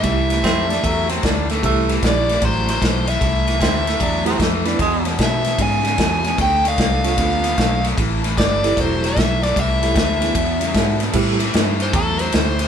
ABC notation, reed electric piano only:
X:1
M:4/4
L:1/8
Q:"Swing" 1/4=151
K:Am
V:1 name="Reed electric piano"
[A,CEG]4- [A,CEG] z3 | [A,CEG]4- [A,CEG] z3 | z4 z [A,CEG] z [B,DEB] | z8 |
z3 [CDFA]3 z2 | z3 [CEGA]3 z2 | z [CEGA] z [B,DE^G] z4 | [G,A,CEG] z6 z |]